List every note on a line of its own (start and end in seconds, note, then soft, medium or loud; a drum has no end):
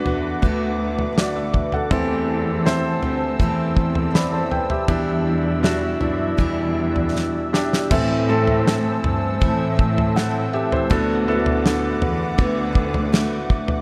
0.00 1.93 A2 medium
0.00 1.93 D4 medium
0.00 1.18 F#4 medium
0.00 1.88 B4 medium
0.00 1.93 B4 medium
0.00 1.88 F#5 medium
0.00 1.88 D6 medium
0.06 0.40 E2 medium
0.06 0.42 A3 soft
0.06 0.43 B3 soft
0.06 0.43 F#4 medium
0.06 floor tom medium
0.42 1.50 D2 medium
0.42 1.91 D3 medium
0.42 1.91 A3 medium
0.42 1.92 B3 medium
0.42 1.92 F#4 medium
0.42 kick medium
0.42 floor tom medium
0.99 floor tom medium
1.17 1.35 F#4 medium
1.17 1.35 D5 medium
1.17 snare loud
1.36 1.71 E5 medium
1.54 kick medium
1.54 floor tom medium
1.72 1.90 A4 soft
1.72 2.08 F#5 medium
1.72 floor tom medium
1.90 2.98 E2 loud
1.90 3.39 E3 medium
1.90 2.99 E3 medium
1.90 3.03 A3 medium
1.90 2.62 C4 medium
1.90 3.02 C4 medium
1.90 2.62 E4 medium
1.90 3.02 G4 medium
1.90 2.62 A4 medium
1.90 4.86 C5 medium
1.90 4.85 A5 medium
1.90 7.87 E6 medium
1.90 kick loud
1.90 floor tom loud
2.66 4.07 C4 medium
2.66 4.07 E4 medium
2.66 4.07 C5 medium
2.66 snare loud
3.02 3.37 D2 medium
3.02 3.39 A3 soft
3.02 3.40 C4 medium
3.02 3.40 G4 medium
3.02 floor tom medium
3.40 4.85 E2 medium
3.40 4.88 E3 medium
3.40 4.89 A3 medium
3.40 4.89 C4 medium
3.40 4.89 G4 medium
3.40 kick medium
3.40 floor tom medium
3.77 kick medium
3.95 floor tom medium
4.14 4.32 D5 soft
4.14 4.32 B5 medium
4.14 snare loud
4.32 4.51 C5 medium
4.32 4.50 A5 medium
4.51 4.69 B4 medium
4.51 4.69 G5 medium
4.51 floor tom medium
4.70 4.87 G4 medium
4.70 5.06 E5 medium
4.70 floor tom medium
4.88 5.63 E2 medium
4.88 5.97 E2 medium
4.88 5.63 B2 medium
4.88 5.97 B2 medium
4.88 5.62 E3 medium
4.88 5.62 G3 loud
4.88 5.60 D4 medium
4.88 5.63 D4 medium
4.88 5.60 E4 medium
4.88 5.64 E4 medium
4.88 5.60 G4 medium
4.88 7.89 D5 medium
4.88 7.88 E5 medium
4.88 kick loud
4.88 floor tom loud
5.63 6.01 E3 medium
5.63 6.01 G3 medium
5.63 7.07 D4 medium
5.63 6.00 D4 medium
5.63 7.07 E4 medium
5.63 5.99 E4 medium
5.63 7.08 F#4 medium
5.63 snare loud
6.00 6.36 F#2 medium
6.00 6.37 E3 soft
6.00 6.39 D4 soft
6.00 6.38 E4 soft
6.00 floor tom medium
6.37 7.91 E2 medium
6.37 7.49 E2 medium
6.37 7.90 B2 medium
6.37 7.91 E3 medium
6.37 7.91 G3 medium
6.37 7.91 D4 medium
6.37 7.92 E4 medium
6.37 kick medium
6.37 floor tom soft
6.96 floor tom medium
7.16 snare soft
7.53 7.89 D4 medium
7.53 7.90 E4 medium
7.53 7.90 G4 medium
7.53 snare medium
7.73 snare medium
7.91 8.29 A2 medium
7.91 9.00 A2 loud
7.91 9.00 A2 medium
7.91 8.29 E3 medium
7.91 9.00 E3 medium
7.91 8.27 A3 medium
7.91 8.29 A3 loud
7.91 8.27 C4 medium
7.91 8.28 C4 loud
7.91 8.27 E4 medium
7.91 8.27 A4 medium
7.91 10.88 C5 medium
7.91 10.88 A5 medium
7.91 10.88 E6 medium
7.91 kick loud
7.91 floor tom loud
7.91 crash loud
8.28 9.72 A3 medium
8.28 9.41 A3 soft
8.28 9.72 C4 medium
8.28 9.41 C4 soft
8.28 9.42 E4 soft
8.28 9.72 E4 medium
8.28 9.72 A4 medium
8.47 floor tom medium
8.68 snare loud
9.04 9.42 G2 medium
9.04 floor tom medium
9.41 10.87 A2 loud
9.41 10.15 E3 medium
9.41 10.16 A3 medium
9.41 10.16 C4 medium
9.41 10.17 E4 medium
9.41 kick loud
9.41 floor tom medium
9.79 kick loud
9.98 floor tom medium
10.16 10.89 E3 medium
10.16 10.91 A3 medium
10.16 10.91 C4 medium
10.16 10.91 E4 medium
10.16 10.52 A4 medium
10.16 10.52 F#5 medium
10.16 snare loud
10.53 10.71 G4 medium
10.53 10.71 E5 medium
10.72 11.08 E4 medium
10.72 11.08 C5 medium
10.72 floor tom medium
10.90 11.98 D2 loud
10.90 11.98 A2 medium
10.90 12.37 D3 loud
10.90 12.38 A3 loud
10.90 11.26 B3 medium
10.90 12.38 B3 loud
10.90 11.26 D4 medium
10.90 11.26 F#4 medium
10.90 12.39 F#4 loud
10.90 11.26 A4 loud
10.90 13.82 B4 medium
10.90 13.82 F#5 medium
10.90 13.82 D6 medium
10.90 kick loud
10.90 floor tom loud
11.28 12.68 B3 medium
11.28 12.68 D4 medium
11.28 11.34 E4 medium
11.28 12.68 A4 loud
11.35 12.72 F#4 medium
11.46 floor tom medium
11.66 snare loud
12.02 12.36 E2 medium
12.02 floor tom medium
12.38 13.46 D2 loud
12.38 13.11 D3 medium
12.38 13.13 A3 medium
12.38 13.13 B3 medium
12.38 13.13 F#4 medium
12.38 kick loud
12.38 floor tom medium
12.75 kick medium
12.94 floor tom medium
13.13 13.82 D3 medium
13.13 13.82 A3 medium
13.13 13.82 B3 medium
13.13 13.82 F#4 medium
13.13 snare loud
13.50 kick medium
13.68 floor tom medium